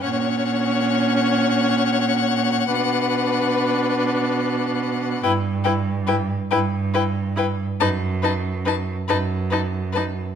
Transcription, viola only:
X:1
M:6/8
L:1/8
Q:3/8=46
K:Bm
V:1 name="Viola"
C6 | D6 | [K:Em] E E E E E E | ^D D D D D D |]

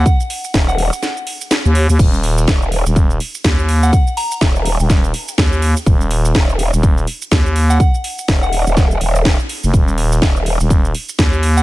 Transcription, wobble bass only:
X:1
M:4/4
L:1/16
Q:"Swing 16ths" 1/4=124
K:Ebm
V:1 name="Wobble bass" clef=bass
z4 E,,,3 z8 z | z4 E,,,3 z8 z | z4 E,,,3 z8 z | z4 E,,,3 z8 z |
z4 E,,,3 E,,,3 E,,,3 z3 | z4 E,,,3 z8 z |]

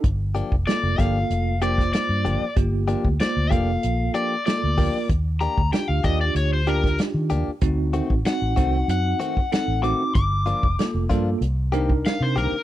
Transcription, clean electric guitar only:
X:1
M:4/4
L:1/8
Q:1/4=95
K:Gm
V:1 name="Clean electric guitar"
z [F,B,DG] z [F,B,DG] z [F,B,DG] z [F,B,DG] | z [F,B,DG] z [F,B,DG] z [F,B,DG] z [F,B,DG] | z [B,DG] z [B,DG] z [B,DG] z [B,DG] | z [E,A,C^F] z [E,A,CF] z [E,A,CF] z [E,A,CF] |
z [F,B,DF] z [F,B,DF] z [E,B,CG] z [E,B,CG] |]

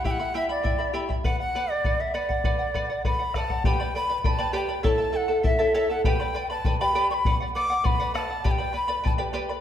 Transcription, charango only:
X:1
M:2/4
L:1/16
Q:1/4=100
K:Glyd
V:1 name="Charango"
[EGegb] [Eeb] [EGegb] [Eeb] [Eegb] [Eeb] [EGegb] [Eeb] | [Bdf] [df] [Bdf] [df] [Bdf] [df] [Bdf] [df] | [Bdf] [df] [Bdf] [df] [Bdf] [df] [Bdf] [df] | [GBdgb] [Bdb] [Bdgb] [Bdb] [Bdgb] [GBdgb] [GBdgb] [Bdb] |
[EAcea] [EAa] [EAea] [EAa] [EAea] [EAcea] [EAcea] [EAa] | [GBdgb] [Bdb] [Bdgb] [Bdb] [Bdgb] [GBdgb] [GBdgb] [Bdb] | [Bdf] [df] [Bdf] [df] [Bdf] [Bdf] [Bdf] [df] | [GBdgb] [Bdb] [Bdgb] [Bdb] [Bdgb] [GBdgb] [GBdgb] [Bdb] |]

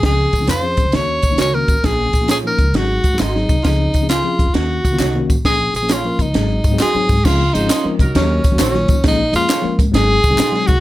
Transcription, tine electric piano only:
X:1
M:4/4
L:1/16
Q:"Swing" 1/4=133
K:Db
V:1 name="Tine electric piano"
[F,CDA]2 z [F,CDE] z [F,CDA]2 z [E,B,DG]2 z [E,B,DE] z [E,B,DG]2 z | [F,B,DA]2 z [F,B,DF] z [F,B,DE]2 z [G,CEA]2 z [G,CEA] z [G,CEA]2 z | [F,CDA]2 z [F,CDA] z [F,CDA]2 z [E,B,DG]2 z [E,B,DF] z [E,B,DG]2 z | [F,B,DA]2 z [F,B,DA] z [F,B,DB]2 z [G,CEA]2 z [G,CEA] z [G,CEA]2 z |
[F,A,CDA] z [F,A,CDA]2 z [F,A,CDB]2 z [E,G,B,DG]2 z [E,G,B,DG] z [E,G,B,DF]2 z | [F,A,B,DA] z [F,A,B,DA]2 z [F,A,B,DB]2 z [G,A,CEA]2 z [G,A,CEA] z [G,A,CEA]2 z |]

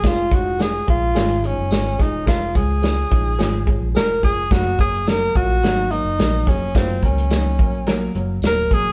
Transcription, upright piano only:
X:1
M:4/4
L:1/8
Q:1/4=107
K:Db
V:1 name="Upright piano"
[F,A,DA] [F,A,DE] [F,A,DA] [F,A,DA] [F,A,DA] [F,A,DE] [F,A,DA] [F,A,DA] | [F,A,DB] [F,A,DA] [F,A,DA] [F,A,DE] [F,A,DA] [F,A,DA] [F,A,DA] [F,A,DA] | [G,B,DB] [G,B,DB] [G,B,DB] [G,B,DF] [G,B,DE] [G,B,DB] [G,B,DB] [G,B,DA] | [G,B,DF] [G,B,DB] [G,B,DE] [G,B,DB] [G,B,DB] [G,B,DB] [G,B,Dd] [G,B,DB] |]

